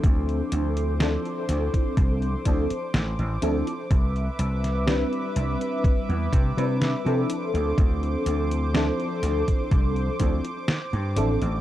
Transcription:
<<
  \new Staff \with { instrumentName = "Analog synth pad" } { \time 4/4 \key d \dorian \tempo 4 = 62 << { d'''1~ | d'''1~ | d'''1 | } \\ { c''1 | <b' e''>2.~ <b' e''>8 c''8~ | c''1 | } >> }
  \new Staff \with { instrumentName = "FM electric piano" } { \time 4/4 \key d \dorian <f c' d' e' a'>4 <f c' d' e' a'>4. <f c' d' e' a'>16 r8. <f c' d' e' a'>16 r16 | r4 <g c' d' e' b'>4.~ <g c' d' e' b'>16 <g c' d' e' b'>8 <f c' d' e' a'>8.~ | <f c' d' e' a'>4 <f c' d' e' a'>4. <f c' d' e' a'>16 r8. <f c' d' e' a'>16 r16 | }
  \new Staff \with { instrumentName = "Slap bass" } { \clef bass \time 4/4 \key d \dorian d,16 r16 d,8. r16 d,16 r16 c,16 r16 d,16 r16 a,,16 a,,16 d,16 r16 | c,16 r16 c,8. r16 c,16 r8 e,16 c16 c16 r16 c16 r16 d,16 | d,16 r16 d,8. r16 d,16 r16 c,16 r16 d,16 r8 g,16 a,,16 a,,16 | }
  \new DrumStaff \with { instrumentName = "Drums" } \drummode { \time 4/4 <hh bd>16 hh16 hh16 hh16 <hh sn>16 hh16 <hh sn>16 <hh bd>16 <hh bd>16 hh16 <hh bd>16 hh16 <hh sn>16 hh16 hh16 hh16 | <hh bd>16 hh16 hh16 <hh sn>16 <hh sn>16 hh16 hh16 hh16 <hh bd>16 hh16 <hh bd>16 hh16 <hh sn>16 hh16 hh16 hh16 | <hh bd>16 hh16 hh16 hh16 <hh sn>16 hh16 <hh sn>16 <hh bd>16 <hh bd>16 hh16 <hh bd>16 hh16 <hh sn>16 hh16 hh16 hh16 | }
>>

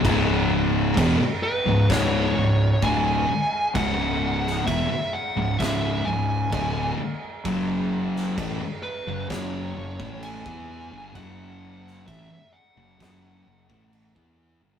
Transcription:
<<
  \new Staff \with { instrumentName = "Lead electric guitar" } { \time 4/4 \key cis \minor \tempo 4 = 65 r4. b'8 cis''4 gis''4 | fis''4 e''8 fis''8 e''8 gis''4 r8 | r4. b'8 cis''4 gis''4 | fis''4 e''8 fis''2 r8 | }
  \new Staff \with { instrumentName = "Distorted electric guitar" } { \clef bass \time 4/4 \key cis \minor <cis, gis, cis>4 <e, b,>16 r8 <cis, gis,>16 <cis, gis, cis>8 <cis, gis,>8 <d, a, d>8 r8 | <cis, gis, cis>4 <e, b,>16 r8 <cis, gis,>16 <cis, gis, cis>8 <cis, gis,>8 <d, a, d>8 r8 | <fis, cis fis>4 <a, e>16 r8 <fis, cis>16 <fis, cis fis>8 <fis, cis>16 <a, e a>8 <e b e'>8 <g, d>16 | <fis, cis fis>4 <a, e>16 r8 <fis, cis>16 <fis, cis fis>8 <fis, cis>16 <a, e a>8 <e b e'>8 <g, d>16 | }
  \new Staff \with { instrumentName = "Distorted electric guitar" } { \clef bass \time 4/4 \key cis \minor <cis, gis, cis>4 <e, b,>16 r8 <cis, gis,>16 <cis, gis, cis>8 <cis, gis,>8 <d, a, d>8 r8 | <cis, gis, cis>4 <e, b,>16 r8 <cis, gis,>16 <cis, gis, cis>8 <cis, gis,>8 <d, a, d>8 r8 | <fis, cis fis>4 <a, e>16 r8 <fis, cis>16 <fis, cis fis>8 <fis, cis>16 <a, e a>8 <e b e'>8 <g, d>16 | <fis, cis fis>4 <a, e>16 r8 <fis, cis>16 <fis, cis fis>8 <fis, cis>16 <a, e a>8 <e b e'>8 <g, d>16 | }
  \new Staff \with { instrumentName = "Fingered electric bass" } { \clef bass \time 4/4 \key cis \minor cis,,4 e,,16 r8 cis,,16 cis,,8 cis,,8 d,,8 r8 | cis,,4 e,,16 r8 cis,,16 cis,,8 cis,,8 d,,8 r8 | fis,,4 a,,16 r8 fis,,16 fis,,8 fis,,16 a,,8 e,8 g,,16 | fis,,4 a,,16 r8 fis,,16 fis,,8 fis,,16 a,,8 e,8 g,,16 | }
  \new DrumStaff \with { instrumentName = "Drums" } \drummode { \time 4/4 <cymc bd>4 <cymc bd>4 <cymc bd sn>4 <cymc bd>4 | <cymc bd>8. sn16 <cymc bd>4 <cymc bd sn>4 <cymc bd>4 | <cymc bd>8. sn16 <cymc bd>4 <cymc bd sn>8. bd16 cymc16 bd8. | <cymc bd>8. sn16 <cymc bd>4 <cymc bd sn>8. bd16 cymc16 bd8. | }
>>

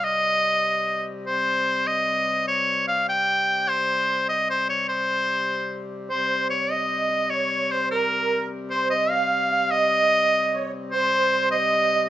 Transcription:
<<
  \new Staff \with { instrumentName = "Accordion" } { \time 6/8 \key c \phrygian \tempo 4. = 99 r2. | r2. | r2. | r2. |
r2. | c''4 des''8 ees''4 ees''8 | des''4 c''8 bes'4. | r8 c''8 ees''8 f''4 f''8 |
ees''2 des''8 r8 | c''4. ees''4 ees''8 | }
  \new Staff \with { instrumentName = "Shawm" } { \time 6/8 \key c \phrygian ees''2~ ees''8 r8 | c''4. ees''4. | des''4 f''8 g''4. | c''4. ees''8 c''8 des''8 |
c''2~ c''8 r8 | c''4 des''8 ees''4. | des''4 c''8 bes'4. | r8 c''8 ees''8 f''4. |
ees''2~ ees''8 r8 | c''4. ees''4. | }
  \new Staff \with { instrumentName = "Harmonium" } { \clef bass \time 6/8 \key c \phrygian <c g>2. | <c g>2.~ | <c g>2.~ | <c g>2.~ |
<c g>2. | <c g>2.~ | <c g>2.~ | <c g>2.~ |
<c g>2. | <c g>2. | }
>>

